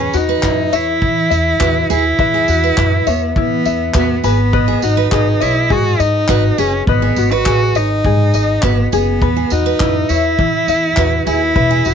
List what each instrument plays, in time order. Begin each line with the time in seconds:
Already playing: cello C#4, ukulele F#4 B4
0.00 steel-string acoustic guitar G#4
0.13 upright bass E2, cello D#4, ukulele F#4, tambourine
0.29 steel-string acoustic guitar B4
0.43 upright bass F#2, ukulele E4, kick, clap
0.72 upright bass E2, cello E4, steel-string acoustic guitar C#5, ukulele E5, tambourine
1.02 upright bass E3, ukulele E4, kick
1.30 upright bass E2, ukulele E5, tambourine
1.60 upright bass E2, ukulele F#4, steel-string acoustic guitar B4, kick, clap
1.90 upright bass D#2, ukulele E4, cello E4, steel-string acoustic guitar G#4, tambourine
2.19 upright bass E2, ukulele B4 E5, kick
2.34 steel-string acoustic guitar G#4
2.48 upright bass E2, ukulele F#4, tambourine
2.64 steel-string acoustic guitar B4
2.78 upright bass F#2, ukulele E4, kick, clap
3.07 upright bass E2, cello B3, steel-string acoustic guitar C#5, ukulele E5, tambourine
3.36 upright bass E3, cello B3, ukulele E4, kick
3.65 upright bass E2, ukulele E5, tambourine
3.94 upright bass E2, cello B3, ukulele F#4, steel-string acoustic guitar B4, kick, clap
4.24 upright bass G#1, cello B3, steel-string acoustic guitar G#4, ukulele B4, tambourine
4.53 ukulele B4 D#5, kick
4.68 steel-string acoustic guitar G#4
4.82 upright bass G#1, cello D#4, ukulele F#4, tambourine
4.97 steel-string acoustic guitar B4
5.12 upright bass G#1, cello D#4, ukulele G#4, kick, clap
5.40 upright bass B1, cello E4, steel-string acoustic guitar C#5, ukulele D#5, tambourine
5.70 upright bass G#2, cello F#4, ukulele G#4, kick
5.99 upright bass G#2, cello D#4, ukulele D#5, tambourine
6.28 upright bass G#1, ukulele F#4, steel-string acoustic guitar B4, kick, clap
6.58 upright bass F#1, cello C#4, steel-string acoustic guitar G#4, ukulele G#4, tambourine
6.87 upright bass G#1, cello B3, ukulele B4 D#5, kick
7.02 steel-string acoustic guitar G#4
7.16 upright bass G#1, ukulele F#4, tambourine
7.31 cello F#4, steel-string acoustic guitar B4
7.46 upright bass A1, ukulele G#4, kick, clap
7.75 upright bass G#1, cello D#4, steel-string acoustic guitar C#5, ukulele D#5, tambourine
8.05 upright bass G#2, ukulele G#4, kick
8.34 upright bass G#1, ukulele D#5, tambourine
8.62 upright bass G#1, cello B3, ukulele F#4, steel-string acoustic guitar B4, kick, clap
8.92 upright bass F#1, cello B3, steel-string acoustic guitar G#4, ukulele G#4, tambourine
9.21 upright bass E2, ukulele B4, kick
9.36 steel-string acoustic guitar G#4
9.50 upright bass E2, cello D#4, ukulele F#4, tambourine
9.66 steel-string acoustic guitar B4
9.80 upright bass F#2, ukulele E4, kick, clap
10.09 upright bass E2, cello E4, steel-string acoustic guitar C#5, ukulele E5, tambourine
10.39 upright bass E3, ukulele E4, kick
10.68 upright bass E2, ukulele E5, tambourine
10.97 upright bass E2, ukulele F#4, steel-string acoustic guitar B4, kick, clap
11.26 upright bass D#2, ukulele E4, cello E4, steel-string acoustic guitar G#4, tambourine
11.56 upright bass E1, ukulele B4 E5, kick
11.71 steel-string acoustic guitar G#4
11.85 upright bass E1, ukulele F#4, tambourine